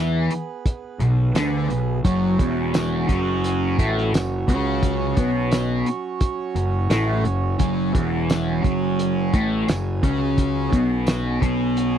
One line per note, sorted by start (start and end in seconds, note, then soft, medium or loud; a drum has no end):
0.00 0.27 E2 medium
0.00 0.30 E3 medium
0.00 2.00 B3 medium
0.00 0.30 E4 medium
0.00 2.00 G#4 medium
0.00 2.00 B4 medium
0.31 closed hi-hat medium
0.66 kick loud
0.66 closed hi-hat medium
0.99 1.32 B1 medium
0.99 1.28 B2 medium
0.99 closed hi-hat medium
1.34 1.67 D2 medium
1.34 1.69 D3 medium
1.34 1.69 D4 medium
1.34 snare loud
1.34 closed hi-hat medium
1.34 tambourine medium
1.69 2.02 B1 medium
1.69 1.97 B2 medium
1.69 closed hi-hat medium
2.04 2.37 F#1 medium
2.04 2.38 F#2 medium
2.04 11.98 F#3 medium
2.04 2.39 F#3 medium
2.04 11.98 C#4 medium
2.04 7.56 F#4 medium
2.04 11.98 C#5 medium
2.04 kick medium
2.04 closed hi-hat medium
2.39 3.05 E1 medium
2.39 3.08 E2 medium
2.39 3.08 E3 medium
2.39 kick loud
2.39 closed hi-hat medium
2.74 snare loud
2.74 closed hi-hat medium
2.74 tambourine medium
3.08 3.74 F#1 medium
3.08 3.77 F#2 medium
3.08 3.77 F#3 medium
3.08 kick medium
3.08 closed hi-hat medium
3.44 closed hi-hat medium
3.78 4.11 A1 medium
3.78 4.12 A2 medium
3.78 4.12 A3 medium
3.78 kick medium
3.78 closed hi-hat medium
3.98 snare soft
4.13 4.45 F#1 medium
4.13 4.41 F#2 medium
4.13 snare loud
4.13 closed hi-hat medium
4.13 tambourine medium
4.48 5.13 C#2 medium
4.48 5.16 C#3 medium
4.48 5.17 C#4 loud
4.48 kick medium
4.48 closed hi-hat medium
4.83 kick medium
4.83 closed hi-hat medium
5.17 5.82 B1 medium
5.17 5.85 B2 medium
5.17 5.86 B3 medium
5.17 kick loud
5.17 closed hi-hat medium
5.52 snare loud
5.52 closed hi-hat medium
5.52 tambourine medium
5.86 closed hi-hat medium
6.21 kick loud
6.21 closed hi-hat medium
6.55 6.88 F#1 medium
6.55 6.83 F#2 medium
6.55 closed hi-hat medium
6.90 7.22 A1 medium
6.90 7.24 A2 medium
6.90 7.24 A3 medium
6.90 snare loud
6.90 closed hi-hat medium
6.90 tambourine medium
7.24 7.57 F#1 medium
7.24 7.53 F#2 medium
7.24 closed hi-hat medium
7.59 7.92 F#1 medium
7.59 7.93 F#2 medium
7.59 7.94 F#3 loud
7.59 11.98 G#5 medium
7.59 kick medium
7.59 closed hi-hat medium
7.94 8.60 E1 medium
7.94 8.63 E2 medium
7.94 8.63 E3 medium
7.94 kick loud
7.94 closed hi-hat medium
8.30 snare loud
8.30 closed hi-hat medium
8.30 tambourine medium
8.63 9.30 F#1 medium
8.63 9.32 F#2 medium
8.63 9.33 F#3 medium
8.63 kick medium
8.63 closed hi-hat medium
8.99 closed hi-hat medium
9.33 9.66 A1 medium
9.33 9.67 A2 medium
9.33 9.68 A3 medium
9.33 kick medium
9.33 closed hi-hat medium
9.67 10.00 F#1 medium
9.67 9.96 F#2 medium
9.67 snare loud
9.67 closed hi-hat medium
9.67 tambourine medium
10.03 10.68 C#2 medium
10.03 10.71 C#3 medium
10.03 10.72 C#4 loud
10.03 kick loud
10.03 closed hi-hat medium
10.38 kick medium
10.38 closed hi-hat medium
10.73 11.38 B1 medium
10.73 11.40 B2 medium
10.73 11.41 B3 medium
10.73 kick loud
10.73 closed hi-hat medium
11.07 snare loud
11.07 closed hi-hat medium
11.07 tambourine medium
11.41 11.98 B1 medium
11.41 11.98 B2 medium
11.41 11.98 B3 medium
11.41 kick medium
11.41 closed hi-hat medium
11.77 closed hi-hat medium